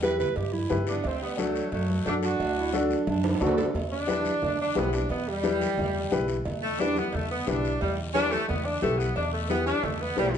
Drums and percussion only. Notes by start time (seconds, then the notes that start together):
0.03 high conga, short guiro
0.20 low conga, short guiro
0.36 cowbell, long guiro
0.54 high conga
0.70 high conga, low conga, short guiro
0.87 short guiro
1.04 cowbell, long guiro
1.38 high conga, short guiro
1.56 short guiro
1.72 cowbell, long guiro
1.90 high conga
2.06 high conga, short guiro
2.23 short guiro
2.40 cowbell, long guiro
2.74 high conga, short guiro
2.91 short guiro
3.07 cowbell, high conga, long guiro
3.24 high conga, high timbale
3.35 high timbale
3.40 low conga, short guiro
3.47 low timbale
3.58 low conga, low timbale, short guiro
3.75 cowbell, low conga, long guiro
4.08 high conga, short guiro
4.25 high conga, short guiro
4.42 cowbell, low conga, long guiro
4.75 high conga, low timbale, short guiro
4.93 short guiro
5.09 cowbell, long guiro
5.43 high conga, short guiro
5.61 high conga, short guiro
5.78 cowbell, low conga, long guiro
6.12 high conga, low conga, short guiro
6.28 short guiro
6.45 cowbell, low conga, long guiro
6.79 high conga, short guiro
6.96 high conga, short guiro
7.12 cowbell, low conga, long guiro
7.47 high conga, low conga, short guiro
7.65 short guiro
7.81 cowbell, low conga, long guiro
8.15 high conga, short guiro
8.32 high conga, short guiro
8.49 cowbell, low conga, long guiro
8.82 high conga, low conga, short guiro
9.00 short guiro
9.16 cowbell, long guiro
9.50 high conga, short guiro
9.67 short guiro
9.83 cowbell, low conga, long guiro
10.17 high conga, low timbale, short guiro
10.34 short guiro